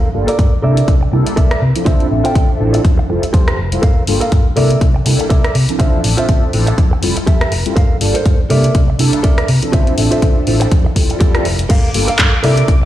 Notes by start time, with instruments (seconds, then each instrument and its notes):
0.14 fingered electric bass G1, analog polysynth G3 A#3 D4 F4 A4
0.27 clean electric guitar A4 A#4 D5, muted fingered electric bass stroke, closed hi-hat
0.39 fingered electric bass G2, kick, closed hi-hat
0.62 fingered electric bass C3, analog polysynth G3 A#3 D4 E4 A4, clean electric guitar A4 A#4 D5 E5
0.77 closed hi-hat
0.88 fingered electric bass C2, kick, closed hi-hat
1.01 muted clean electric guitar stroke
1.12 fingered electric bass C3, analog polysynth G3 A#3 D4 E4 A4, muted clean electric guitar stroke
1.26 muted clean electric guitar stroke, muted fingered electric bass stroke, closed hi-hat
1.36 fingered electric bass C2, clean electric guitar A4 A#4 D5 E5, kick, closed hi-hat
1.51 cross-stick, closed hi-hat
1.62 fingered electric bass C3
1.75 analog polysynth F3 C4 D4 E4 A4, closed hi-hat
1.85 fingered electric bass D2, clean electric guitar F4 C5 E5, kick, closed hi-hat
2.00 closed hi-hat
2.10 fingered electric bass A1, analog polysynth F3 C4 D4 A4 E5
2.24 clean electric guitar F4 C5 G5, closed hi-hat
2.35 fingered electric bass D2, kick, closed hi-hat
2.60 fingered electric bass A1, analog polysynth F3 C4 D4 E4 A4
2.73 muted clean electric guitar stroke, closed hi-hat
2.84 fingered electric bass F2, muted clean electric guitar stroke, kick, closed hi-hat
2.98 muted clean electric guitar stroke, muted fingered electric bass stroke
3.08 fingered electric bass F1, analog polysynth G3 C4 E4 F4 A4, muted clean electric guitar stroke
3.22 muted clean electric guitar stroke, muted fingered electric bass stroke, closed hi-hat
3.33 fingered electric bass F2, clean electric guitar G4 A4 C5, kick, closed hi-hat
3.48 cross-stick, closed hi-hat
3.58 fingered electric bass F1
3.72 analog polysynth G3 C4 E4 F4 A4, closed hi-hat
3.82 fingered electric bass G2, clean electric guitar A4 A#4 F5, kick, closed hi-hat
4.07 fingered electric bass G1, analog polysynth G3 A#3 D4 F4 A4, open hi-hat
4.21 clean electric guitar A4 A#4 F5, muted fingered electric bass stroke, closed hi-hat
4.32 fingered electric bass G2, kick, closed hi-hat
4.56 fingered electric bass C3, analog polysynth G3 A#3 D4 E4 A4, clean electric guitar A4 A#4 D5 E5, open hi-hat
4.70 closed hi-hat
4.81 fingered electric bass C2, kick, closed hi-hat
4.94 muted clean electric guitar stroke
5.05 fingered electric bass C3, analog polysynth G3 A#3 D4 E4 A4, muted clean electric guitar stroke, open hi-hat
5.19 muted clean electric guitar stroke, muted fingered electric bass stroke, closed hi-hat
5.30 fingered electric bass C2, clean electric guitar A4 A#4 D5 E5, kick, closed hi-hat
5.44 cross-stick, closed hi-hat
5.55 fingered electric bass C3, open hi-hat
5.69 analog polysynth F3 C4 D4 E4 A4, closed hi-hat
5.79 fingered electric bass D2, clean electric guitar F4 C5 E5, kick, closed hi-hat
6.04 fingered electric bass A1, analog polysynth F3 C4 D4 A4 E5, open hi-hat
6.17 clean electric guitar F4 C5 E5, closed hi-hat
6.29 fingered electric bass D2, kick, closed hi-hat
6.53 fingered electric bass A1, analog polysynth F3 C4 D4 E4 A4, open hi-hat
6.67 muted clean electric guitar stroke, closed hi-hat
6.77 fingered electric bass F2, muted clean electric guitar stroke, kick, closed hi-hat
6.91 muted clean electric guitar stroke, muted fingered electric bass stroke
7.02 fingered electric bass F1, analog polysynth G3 C4 E4 F4 A4, muted clean electric guitar stroke, open hi-hat
7.16 muted clean electric guitar stroke, muted fingered electric bass stroke, closed hi-hat
7.27 fingered electric bass F2, clean electric guitar G4 A4 E5, kick, closed hi-hat
7.41 cross-stick, closed hi-hat
7.52 fingered electric bass F1, open hi-hat
7.65 analog polysynth G3 C4 E4 F4 A4, closed hi-hat
7.76 fingered electric bass G2, clean electric guitar A4 A#4 F5, kick, closed hi-hat
8.00 fingered electric bass G1, analog polysynth G3 A#3 D4 F4 A4, open hi-hat
8.14 clean electric guitar A4 A#4 C5, muted fingered electric bass stroke, closed hi-hat
8.26 fingered electric bass G2, kick, closed hi-hat
8.50 fingered electric bass C3, analog polysynth G3 A#3 D4 E4 A4, clean electric guitar A4 A#4 D5 E5, open hi-hat
8.64 closed hi-hat
8.75 fingered electric bass C2, kick, closed hi-hat
8.88 muted clean electric guitar stroke
8.99 fingered electric bass C3, analog polysynth G3 A#3 D4 E4 A4, muted clean electric guitar stroke, open hi-hat
9.13 muted clean electric guitar stroke, muted fingered electric bass stroke, closed hi-hat
9.23 fingered electric bass C2, clean electric guitar A4 A#4 D5 E5, kick, closed hi-hat
9.38 cross-stick, closed hi-hat
9.48 fingered electric bass C3, open hi-hat
9.62 analog polysynth F3 C4 D4 E4 A4, closed hi-hat
9.72 fingered electric bass D2, clean electric guitar F4 C5 E5, kick, closed hi-hat
9.87 closed hi-hat
9.97 fingered electric bass A1, analog polysynth F3 C4 D4 A4 E5, open hi-hat
10.11 clean electric guitar F4 C5 E5, closed hi-hat
10.22 fingered electric bass D2, kick, closed hi-hat
10.47 fingered electric bass A1, analog polysynth F3 C4 D4 E4 A4, open hi-hat
10.60 muted clean electric guitar stroke, closed hi-hat
10.71 fingered electric bass F2, muted clean electric guitar stroke, kick, closed hi-hat
10.85 muted clean electric guitar stroke, muted fingered electric bass stroke
10.95 fingered electric bass F1, analog polysynth G3 C4 E4 F4 A4, muted clean electric guitar stroke, kick, open hi-hat
11.09 muted clean electric guitar stroke, muted fingered electric bass stroke, closed hi-hat
11.20 fingered electric bass F2, analog polysynth G3 C4 E4 F4 A4, clean electric guitar G4 A4 D5, kick, closed hi-hat
11.34 analog polysynth G3 C4 E4 F4 A4, cross-stick, closed hi-hat
11.45 fingered electric bass F1, open hi-hat
11.59 closed hi-hat
11.69 fingered electric bass G2, clean electric guitar A4 A#4 F5, violin section D6, kick, closed hi-hat, crash
11.94 fingered electric bass G1, analog polysynth G3 A#3 D4 F4 A4, open hi-hat
12.08 clean electric guitar A4 A#4 F5, muted fingered electric bass stroke, closed hi-hat
12.19 fingered electric bass G2, kick, clap, closed hi-hat
12.43 fingered electric bass C3, analog polysynth G3 A#3 D4 E4 A4, clean electric guitar A4 A#4 D5 E5, open hi-hat
12.57 closed hi-hat
12.68 fingered electric bass C2, kick, closed hi-hat
12.81 muted clean electric guitar stroke